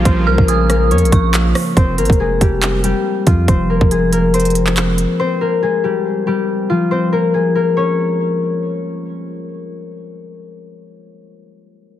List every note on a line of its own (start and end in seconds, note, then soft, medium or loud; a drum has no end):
0.00 1.73 C#3 medium
0.00 1.73 F3 medium
0.00 1.82 F3 medium
0.00 1.82 G3 medium
0.00 0.48 G#3 medium
0.00 0.27 A#3 medium
0.00 1.73 A#3 medium
0.00 1.73 F4 medium
0.00 2.36 F4 medium
0.00 0.54 G4 medium
0.00 0.26 A#4 medium
0.05 0.28 A#1 loud
0.05 0.97 C4 medium
0.05 0.97 C5 medium
0.05 kick loud
0.05 closed hi-hat medium
0.27 0.38 C2 loud
0.27 0.70 A#3 medium
0.27 0.69 A#4 medium
0.27 0.47 F6 medium
0.38 0.93 A#1 loud
0.38 kick loud
0.48 1.82 G#3 medium
0.48 2.19 G#4 medium
0.48 1.09 D#6 medium
0.48 closed hi-hat medium
0.70 1.99 A#3 medium
0.70 1.98 A#4 medium
0.70 cross-stick loud
0.70 closed hi-hat medium
0.91 1.04 F2 loud
0.91 1.83 C#4 medium
0.91 1.83 C#5 medium
0.91 closed hi-hat soft
0.98 closed hi-hat medium
1.02 1.12 A#1 loud
1.02 closed hi-hat medium
1.12 1.54 A#1 loud
1.12 1.33 C#6 medium
1.12 kick loud
1.12 closed hi-hat loud
1.34 clap loud
1.34 closed hi-hat medium
1.55 cross-stick loud
1.55 open hi-hat medium
1.77 2.00 F1 loud
1.77 3.49 C4 medium
1.77 3.48 C5 loud
1.77 kick loud
1.77 closed hi-hat medium
1.98 2.09 G#1 loud
1.98 3.70 A#3 medium
1.98 3.69 A#4 medium
1.98 closed hi-hat medium
2.05 closed hi-hat medium
2.10 2.40 F1 loud
2.10 kick loud
2.10 closed hi-hat soft
2.20 3.91 G#3 medium
2.20 2.47 G#4 medium
2.41 2.93 F1 loud
2.41 2.84 G3 medium
2.41 2.84 G4 medium
2.41 kick medium
2.41 closed hi-hat medium
2.62 clap loud
2.62 closed hi-hat medium
2.84 5.25 G3 medium
2.84 3.97 G4 medium
2.84 closed hi-hat medium
3.27 3.47 F2 loud
3.27 5.25 F3 medium
3.27 5.79 F4 medium
3.27 kick medium
3.27 closed hi-hat medium
3.48 3.80 F1 loud
3.48 4.34 C4 medium
3.48 4.33 C5 medium
3.48 kick loud
3.48 closed hi-hat medium
3.70 4.13 A#3 medium
3.70 4.12 A#4 medium
3.81 5.06 F1 loud
3.81 kick loud
3.91 5.25 G#3 medium
3.91 5.62 G#4 medium
3.91 closed hi-hat medium
4.12 5.41 A#3 medium
4.12 5.41 A#4 medium
4.12 closed hi-hat medium
4.34 5.20 C4 medium
4.34 5.19 C5 medium
4.34 closed hi-hat medium
4.40 closed hi-hat medium
4.45 closed hi-hat medium
4.50 closed hi-hat soft
4.55 closed hi-hat medium
4.67 clap medium
4.77 clap loud
4.77 closed hi-hat medium
4.98 closed hi-hat medium
5.20 6.91 C4 medium
5.20 6.91 C5 loud
5.41 7.13 A#3 medium
5.41 7.12 A#4 medium
5.62 7.34 G#3 medium
5.62 5.90 G#4 medium
5.84 6.26 G3 medium
5.84 6.26 G4 medium
6.27 8.68 G3 medium
6.27 7.40 G4 medium
6.70 8.68 F3 medium
6.70 9.22 F4 medium
6.91 7.83 C4 medium
6.91 7.83 C5 medium
7.12 7.56 A#3 medium
7.12 7.55 A#4 medium
7.34 8.68 G#3 medium
7.34 9.61 G#4 medium
7.55 10.78 A#3 medium
7.55 9.67 A#4 medium
7.77 10.67 C#4 medium
7.77 9.68 C#5 medium